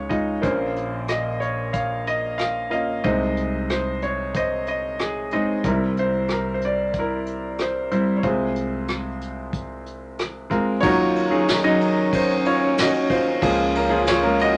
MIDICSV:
0, 0, Header, 1, 5, 480
1, 0, Start_track
1, 0, Tempo, 649351
1, 324, Time_signature, 4, 2, 24, 8
1, 10770, End_track
2, 0, Start_track
2, 0, Title_t, "French horn"
2, 0, Program_c, 0, 60
2, 8004, Note_on_c, 0, 65, 92
2, 8455, Note_off_c, 0, 65, 0
2, 8476, Note_on_c, 0, 63, 90
2, 8727, Note_on_c, 0, 61, 89
2, 8738, Note_off_c, 0, 63, 0
2, 9918, Note_off_c, 0, 61, 0
2, 9923, Note_on_c, 0, 65, 91
2, 10370, Note_off_c, 0, 65, 0
2, 10393, Note_on_c, 0, 65, 93
2, 10770, Note_off_c, 0, 65, 0
2, 10770, End_track
3, 0, Start_track
3, 0, Title_t, "Grand piano"
3, 0, Program_c, 1, 0
3, 0, Control_c, 1, 64, 127
3, 0, Note_on_c, 1, 37, 44
3, 0, Note_on_c, 1, 49, 43
3, 0, Note_on_c, 1, 56, 51
3, 0, Note_on_c, 1, 63, 48
3, 0, Note_on_c, 1, 65, 46
3, 0, Note_on_c, 1, 73, 62
3, 68, Note_off_c, 1, 56, 0
3, 68, Note_on_c, 1, 56, 50
3, 69, Note_off_c, 1, 63, 0
3, 69, Note_on_c, 1, 63, 48
3, 70, Note_off_c, 1, 65, 0
3, 70, Note_on_c, 1, 65, 48
3, 70, Note_on_c, 1, 75, 55
3, 168, Note_off_c, 1, 73, 0
3, 234, Note_off_c, 1, 56, 0
3, 234, Note_off_c, 1, 63, 0
3, 235, Note_off_c, 1, 65, 0
3, 235, Note_off_c, 1, 75, 0
3, 291, Note_off_c, 1, 37, 0
3, 293, Note_off_c, 1, 49, 0
3, 308, Note_on_c, 1, 58, 65
3, 313, Note_on_c, 1, 46, 56
3, 313, Note_on_c, 1, 65, 60
3, 314, Note_on_c, 1, 34, 56
3, 315, Note_on_c, 1, 61, 61
3, 317, Note_on_c, 1, 72, 68
3, 333, Control_c, 1, 64, 0
3, 469, Control_c, 1, 64, 127
3, 806, Note_on_c, 1, 75, 75
3, 949, Note_off_c, 1, 58, 0
3, 952, Note_off_c, 1, 65, 0
3, 953, Note_off_c, 1, 61, 0
3, 954, Note_off_c, 1, 72, 0
3, 1030, Note_off_c, 1, 75, 0
3, 1036, Note_on_c, 1, 73, 65
3, 1271, Note_off_c, 1, 73, 0
3, 1280, Note_on_c, 1, 77, 71
3, 1282, Note_on_c, 1, 73, 52
3, 1532, Note_off_c, 1, 77, 0
3, 1534, Note_on_c, 1, 75, 75
3, 1759, Note_on_c, 1, 77, 78
3, 1779, Note_off_c, 1, 75, 0
3, 1994, Note_off_c, 1, 77, 0
3, 1997, Note_on_c, 1, 58, 51
3, 2003, Note_on_c, 1, 75, 64
3, 2004, Note_on_c, 1, 61, 52
3, 2004, Note_on_c, 1, 65, 53
3, 2005, Note_on_c, 1, 77, 72
3, 2161, Note_off_c, 1, 58, 0
3, 2165, Note_off_c, 1, 61, 0
3, 2165, Note_off_c, 1, 65, 0
3, 2165, Note_off_c, 1, 75, 0
3, 2215, Note_off_c, 1, 46, 0
3, 2216, Note_off_c, 1, 34, 0
3, 2218, Note_off_c, 1, 73, 0
3, 2246, Note_on_c, 1, 48, 50
3, 2246, Note_on_c, 1, 75, 74
3, 2248, Note_on_c, 1, 36, 50
3, 2248, Note_on_c, 1, 56, 58
3, 2251, Note_on_c, 1, 63, 51
3, 2251, Note_on_c, 1, 72, 65
3, 2253, Note_on_c, 1, 60, 51
3, 2255, Note_off_c, 1, 77, 0
3, 2259, Control_c, 1, 64, 0
3, 2369, Control_c, 1, 64, 127
3, 2726, Note_off_c, 1, 72, 0
3, 2737, Note_on_c, 1, 72, 68
3, 2742, Note_off_c, 1, 75, 0
3, 2880, Note_off_c, 1, 56, 0
3, 2882, Note_off_c, 1, 60, 0
3, 2882, Note_off_c, 1, 63, 0
3, 2957, Note_off_c, 1, 72, 0
3, 2977, Note_on_c, 1, 73, 67
3, 3220, Note_off_c, 1, 73, 0
3, 3221, Note_on_c, 1, 72, 53
3, 3227, Note_on_c, 1, 75, 68
3, 3450, Note_off_c, 1, 75, 0
3, 3461, Note_on_c, 1, 75, 71
3, 3699, Note_on_c, 1, 68, 67
3, 3701, Note_off_c, 1, 75, 0
3, 3936, Note_on_c, 1, 56, 58
3, 3939, Note_on_c, 1, 75, 66
3, 3943, Note_on_c, 1, 63, 53
3, 3944, Note_on_c, 1, 60, 51
3, 4089, Note_off_c, 1, 56, 0
3, 4090, Note_off_c, 1, 75, 0
3, 4092, Note_off_c, 1, 60, 0
3, 4092, Note_off_c, 1, 63, 0
3, 4134, Note_off_c, 1, 48, 0
3, 4135, Note_off_c, 1, 36, 0
3, 4142, Note_off_c, 1, 68, 0
3, 4142, Note_off_c, 1, 72, 0
3, 4177, Control_c, 1, 64, 0
3, 4177, Note_on_c, 1, 60, 57
3, 4178, Note_on_c, 1, 55, 59
3, 4179, Note_on_c, 1, 36, 51
3, 4180, Note_on_c, 1, 64, 51
3, 4180, Note_on_c, 1, 70, 63
3, 4181, Note_on_c, 1, 48, 49
3, 4292, Control_c, 1, 64, 127
3, 4429, Note_on_c, 1, 72, 68
3, 4659, Note_off_c, 1, 70, 0
3, 4663, Note_off_c, 1, 72, 0
3, 4670, Note_on_c, 1, 70, 65
3, 4801, Note_off_c, 1, 55, 0
3, 4801, Note_off_c, 1, 60, 0
3, 4802, Note_off_c, 1, 64, 0
3, 4836, Note_on_c, 1, 72, 55
3, 4851, Note_off_c, 1, 70, 0
3, 4886, Note_off_c, 1, 72, 0
3, 4915, Note_on_c, 1, 74, 65
3, 5146, Note_off_c, 1, 74, 0
3, 5165, Note_on_c, 1, 64, 47
3, 5171, Note_on_c, 1, 70, 67
3, 5626, Note_on_c, 1, 72, 63
3, 5640, Note_off_c, 1, 70, 0
3, 5840, Note_off_c, 1, 64, 0
3, 5841, Note_off_c, 1, 72, 0
3, 5850, Note_on_c, 1, 55, 57
3, 5851, Note_on_c, 1, 60, 52
3, 5851, Note_on_c, 1, 64, 50
3, 5852, Note_on_c, 1, 72, 60
3, 6003, Note_off_c, 1, 55, 0
3, 6004, Note_off_c, 1, 60, 0
3, 6004, Note_off_c, 1, 64, 0
3, 6004, Note_off_c, 1, 72, 0
3, 6038, Note_on_c, 1, 73, 44
3, 6059, Note_off_c, 1, 36, 0
3, 6060, Note_off_c, 1, 48, 0
3, 6084, Note_on_c, 1, 60, 52
3, 6086, Note_off_c, 1, 73, 0
3, 6088, Note_on_c, 1, 65, 49
3, 6089, Control_c, 1, 64, 0
3, 6090, Note_on_c, 1, 56, 54
3, 6091, Note_on_c, 1, 72, 60
3, 6092, Note_on_c, 1, 36, 50
3, 6093, Note_on_c, 1, 48, 52
3, 6107, Note_on_c, 1, 68, 44
3, 6241, Control_c, 1, 64, 127
3, 6713, Note_off_c, 1, 60, 0
3, 6715, Note_off_c, 1, 65, 0
3, 6716, Note_off_c, 1, 56, 0
3, 6716, Note_off_c, 1, 72, 0
3, 7508, Note_off_c, 1, 68, 0
3, 7760, Note_on_c, 1, 56, 68
3, 7765, Note_on_c, 1, 60, 62
3, 7769, Note_on_c, 1, 65, 55
3, 7769, Note_on_c, 1, 70, 72
3, 7921, Note_off_c, 1, 56, 0
3, 7923, Note_off_c, 1, 60, 0
3, 7925, Note_off_c, 1, 65, 0
3, 7925, Note_off_c, 1, 70, 0
3, 7982, Note_off_c, 1, 36, 0
3, 7982, Note_off_c, 1, 48, 0
3, 7987, Note_on_c, 1, 73, 94
3, 8002, Note_on_c, 1, 51, 58
3, 8003, Note_on_c, 1, 54, 70
3, 8004, Note_on_c, 1, 66, 74
3, 8006, Note_on_c, 1, 61, 58
3, 8008, Note_on_c, 1, 63, 58
3, 8009, Note_on_c, 1, 39, 61
3, 8010, Note_on_c, 1, 70, 75
3, 8016, Control_c, 1, 64, 0
3, 8161, Control_c, 1, 64, 127
3, 8241, Note_off_c, 1, 54, 0
3, 8242, Note_off_c, 1, 61, 0
3, 8243, Note_off_c, 1, 63, 0
3, 8244, Note_off_c, 1, 70, 0
3, 8354, Note_on_c, 1, 54, 64
3, 8361, Note_on_c, 1, 68, 74
3, 8363, Note_on_c, 1, 63, 57
3, 8364, Note_on_c, 1, 61, 59
3, 8517, Note_off_c, 1, 54, 0
3, 8521, Note_off_c, 1, 68, 0
3, 8522, Note_off_c, 1, 61, 0
3, 8522, Note_off_c, 1, 63, 0
3, 8602, Note_on_c, 1, 54, 81
3, 8602, Note_on_c, 1, 61, 76
3, 8604, Note_on_c, 1, 75, 87
3, 8605, Note_on_c, 1, 63, 77
3, 8686, Note_off_c, 1, 73, 0
3, 8695, Note_off_c, 1, 66, 0
3, 8966, Note_off_c, 1, 63, 0
3, 8977, Note_on_c, 1, 63, 54
3, 8980, Note_on_c, 1, 72, 68
3, 9194, Note_off_c, 1, 63, 0
3, 9211, Note_on_c, 1, 65, 62
3, 9214, Note_on_c, 1, 73, 78
3, 9219, Note_off_c, 1, 72, 0
3, 9233, Note_off_c, 1, 54, 0
3, 9233, Note_off_c, 1, 61, 0
3, 9234, Note_off_c, 1, 75, 0
3, 9431, Note_off_c, 1, 65, 0
3, 9432, Note_off_c, 1, 73, 0
3, 9456, Note_on_c, 1, 66, 60
3, 9461, Note_on_c, 1, 75, 82
3, 9673, Note_off_c, 1, 66, 0
3, 9685, Note_on_c, 1, 72, 76
3, 9692, Note_on_c, 1, 65, 61
3, 9698, Note_off_c, 1, 75, 0
3, 9890, Note_off_c, 1, 51, 0
3, 9894, Note_off_c, 1, 39, 0
3, 9918, Note_on_c, 1, 68, 74
3, 9919, Note_on_c, 1, 49, 57
3, 9919, Note_on_c, 1, 58, 63
3, 9922, Note_on_c, 1, 37, 58
3, 9922, Note_on_c, 1, 53, 72
3, 9922, Note_on_c, 1, 61, 61
3, 9931, Control_c, 1, 64, 0
3, 10071, Control_c, 1, 64, 127
3, 10135, Note_off_c, 1, 65, 0
3, 10155, Note_off_c, 1, 68, 0
3, 10156, Note_off_c, 1, 58, 0
3, 10157, Note_off_c, 1, 53, 0
3, 10157, Note_off_c, 1, 61, 0
3, 10171, Note_on_c, 1, 70, 72
3, 10176, Note_off_c, 1, 72, 0
3, 10177, Note_on_c, 1, 61, 60
3, 10262, Note_off_c, 1, 61, 0
3, 10268, Note_on_c, 1, 53, 69
3, 10272, Note_on_c, 1, 58, 60
3, 10273, Note_on_c, 1, 61, 62
3, 10275, Note_on_c, 1, 68, 73
3, 10410, Note_on_c, 1, 73, 78
3, 10412, Note_off_c, 1, 70, 0
3, 10419, Note_on_c, 1, 65, 64
3, 10431, Note_off_c, 1, 53, 0
3, 10433, Note_off_c, 1, 58, 0
3, 10433, Note_off_c, 1, 61, 0
3, 10434, Note_off_c, 1, 68, 0
3, 10515, Note_on_c, 1, 58, 65
3, 10516, Note_on_c, 1, 56, 71
3, 10521, Note_on_c, 1, 61, 67
3, 10522, Note_on_c, 1, 70, 79
3, 10627, Note_off_c, 1, 73, 0
3, 10632, Note_off_c, 1, 65, 0
3, 10655, Note_on_c, 1, 66, 63
3, 10655, Note_on_c, 1, 75, 95
3, 10770, Note_off_c, 1, 37, 0
3, 10770, Note_off_c, 1, 49, 0
3, 10770, Note_off_c, 1, 56, 0
3, 10770, Note_off_c, 1, 58, 0
3, 10770, Note_off_c, 1, 61, 0
3, 10770, Note_off_c, 1, 66, 0
3, 10770, Note_off_c, 1, 70, 0
3, 10770, Note_off_c, 1, 75, 0
3, 10770, End_track
4, 0, Start_track
4, 0, Title_t, "Upright bass"
4, 0, Program_c, 2, 32
4, 0, Note_on_c, 2, 37, 59
4, 303, Note_off_c, 2, 37, 0
4, 317, Note_on_c, 2, 34, 63
4, 2217, Note_off_c, 2, 34, 0
4, 2254, Note_on_c, 2, 36, 67
4, 4138, Note_off_c, 2, 36, 0
4, 4168, Note_on_c, 2, 36, 71
4, 6053, Note_off_c, 2, 36, 0
4, 6085, Note_on_c, 2, 36, 65
4, 7978, Note_off_c, 2, 36, 0
4, 8006, Note_on_c, 2, 39, 73
4, 9892, Note_off_c, 2, 39, 0
4, 9920, Note_on_c, 2, 37, 77
4, 10770, Note_off_c, 2, 37, 0
4, 10770, End_track
5, 0, Start_track
5, 0, Title_t, "Drums"
5, 79, Note_on_c, 9, 36, 48
5, 80, Note_on_c, 9, 42, 36
5, 153, Note_off_c, 9, 36, 0
5, 154, Note_off_c, 9, 42, 0
5, 320, Note_on_c, 9, 36, 68
5, 321, Note_on_c, 9, 42, 50
5, 394, Note_off_c, 9, 36, 0
5, 395, Note_off_c, 9, 42, 0
5, 563, Note_on_c, 9, 42, 40
5, 637, Note_off_c, 9, 42, 0
5, 797, Note_on_c, 9, 42, 49
5, 803, Note_on_c, 9, 37, 64
5, 871, Note_off_c, 9, 42, 0
5, 877, Note_off_c, 9, 37, 0
5, 1044, Note_on_c, 9, 42, 39
5, 1118, Note_off_c, 9, 42, 0
5, 1282, Note_on_c, 9, 42, 56
5, 1285, Note_on_c, 9, 36, 57
5, 1356, Note_off_c, 9, 42, 0
5, 1359, Note_off_c, 9, 36, 0
5, 1527, Note_on_c, 9, 42, 42
5, 1601, Note_off_c, 9, 42, 0
5, 1764, Note_on_c, 9, 42, 52
5, 1770, Note_on_c, 9, 37, 68
5, 1838, Note_off_c, 9, 42, 0
5, 1844, Note_off_c, 9, 37, 0
5, 2010, Note_on_c, 9, 42, 42
5, 2084, Note_off_c, 9, 42, 0
5, 2246, Note_on_c, 9, 42, 53
5, 2250, Note_on_c, 9, 36, 70
5, 2320, Note_off_c, 9, 42, 0
5, 2324, Note_off_c, 9, 36, 0
5, 2488, Note_on_c, 9, 42, 42
5, 2562, Note_off_c, 9, 42, 0
5, 2729, Note_on_c, 9, 42, 48
5, 2735, Note_on_c, 9, 37, 68
5, 2803, Note_off_c, 9, 42, 0
5, 2809, Note_off_c, 9, 37, 0
5, 2971, Note_on_c, 9, 42, 39
5, 3044, Note_off_c, 9, 42, 0
5, 3210, Note_on_c, 9, 42, 55
5, 3213, Note_on_c, 9, 36, 57
5, 3284, Note_off_c, 9, 42, 0
5, 3287, Note_off_c, 9, 36, 0
5, 3448, Note_on_c, 9, 42, 38
5, 3522, Note_off_c, 9, 42, 0
5, 3687, Note_on_c, 9, 42, 52
5, 3693, Note_on_c, 9, 37, 73
5, 3761, Note_off_c, 9, 42, 0
5, 3767, Note_off_c, 9, 37, 0
5, 3924, Note_on_c, 9, 42, 37
5, 3998, Note_off_c, 9, 42, 0
5, 4167, Note_on_c, 9, 42, 52
5, 4170, Note_on_c, 9, 36, 73
5, 4241, Note_off_c, 9, 42, 0
5, 4244, Note_off_c, 9, 36, 0
5, 4411, Note_on_c, 9, 42, 37
5, 4485, Note_off_c, 9, 42, 0
5, 4644, Note_on_c, 9, 42, 50
5, 4650, Note_on_c, 9, 37, 65
5, 4718, Note_off_c, 9, 42, 0
5, 4724, Note_off_c, 9, 37, 0
5, 4888, Note_on_c, 9, 42, 39
5, 4962, Note_off_c, 9, 42, 0
5, 5125, Note_on_c, 9, 42, 54
5, 5129, Note_on_c, 9, 36, 57
5, 5199, Note_off_c, 9, 42, 0
5, 5203, Note_off_c, 9, 36, 0
5, 5369, Note_on_c, 9, 42, 42
5, 5443, Note_off_c, 9, 42, 0
5, 5605, Note_on_c, 9, 42, 55
5, 5611, Note_on_c, 9, 37, 71
5, 5679, Note_off_c, 9, 42, 0
5, 5685, Note_off_c, 9, 37, 0
5, 5848, Note_on_c, 9, 42, 43
5, 5922, Note_off_c, 9, 42, 0
5, 6083, Note_on_c, 9, 42, 55
5, 6086, Note_on_c, 9, 36, 67
5, 6157, Note_off_c, 9, 42, 0
5, 6160, Note_off_c, 9, 36, 0
5, 6325, Note_on_c, 9, 42, 43
5, 6399, Note_off_c, 9, 42, 0
5, 6564, Note_on_c, 9, 42, 56
5, 6570, Note_on_c, 9, 37, 66
5, 6638, Note_off_c, 9, 42, 0
5, 6644, Note_off_c, 9, 37, 0
5, 6809, Note_on_c, 9, 42, 42
5, 6883, Note_off_c, 9, 42, 0
5, 7045, Note_on_c, 9, 36, 57
5, 7049, Note_on_c, 9, 42, 58
5, 7119, Note_off_c, 9, 36, 0
5, 7123, Note_off_c, 9, 42, 0
5, 7289, Note_on_c, 9, 42, 40
5, 7363, Note_off_c, 9, 42, 0
5, 7530, Note_on_c, 9, 42, 51
5, 7536, Note_on_c, 9, 37, 73
5, 7604, Note_off_c, 9, 42, 0
5, 7610, Note_off_c, 9, 37, 0
5, 7768, Note_on_c, 9, 36, 51
5, 7771, Note_on_c, 9, 42, 41
5, 7842, Note_off_c, 9, 36, 0
5, 7845, Note_off_c, 9, 42, 0
5, 8006, Note_on_c, 9, 36, 90
5, 8008, Note_on_c, 9, 51, 62
5, 8080, Note_off_c, 9, 36, 0
5, 8082, Note_off_c, 9, 51, 0
5, 8247, Note_on_c, 9, 51, 48
5, 8321, Note_off_c, 9, 51, 0
5, 8485, Note_on_c, 9, 51, 56
5, 8491, Note_on_c, 9, 38, 79
5, 8559, Note_off_c, 9, 51, 0
5, 8565, Note_off_c, 9, 38, 0
5, 8730, Note_on_c, 9, 51, 46
5, 8804, Note_off_c, 9, 51, 0
5, 8965, Note_on_c, 9, 36, 68
5, 8967, Note_on_c, 9, 51, 66
5, 9039, Note_off_c, 9, 36, 0
5, 9041, Note_off_c, 9, 51, 0
5, 9207, Note_on_c, 9, 51, 50
5, 9281, Note_off_c, 9, 51, 0
5, 9443, Note_on_c, 9, 51, 69
5, 9449, Note_on_c, 9, 38, 90
5, 9517, Note_off_c, 9, 51, 0
5, 9523, Note_off_c, 9, 38, 0
5, 9683, Note_on_c, 9, 36, 58
5, 9684, Note_on_c, 9, 51, 50
5, 9757, Note_off_c, 9, 36, 0
5, 9758, Note_off_c, 9, 51, 0
5, 9922, Note_on_c, 9, 36, 90
5, 9923, Note_on_c, 9, 51, 72
5, 9996, Note_off_c, 9, 36, 0
5, 9997, Note_off_c, 9, 51, 0
5, 10165, Note_on_c, 9, 51, 50
5, 10239, Note_off_c, 9, 51, 0
5, 10397, Note_on_c, 9, 51, 61
5, 10403, Note_on_c, 9, 38, 79
5, 10471, Note_off_c, 9, 51, 0
5, 10477, Note_off_c, 9, 38, 0
5, 10639, Note_on_c, 9, 51, 48
5, 10712, Note_off_c, 9, 51, 0
5, 10770, End_track
0, 0, End_of_file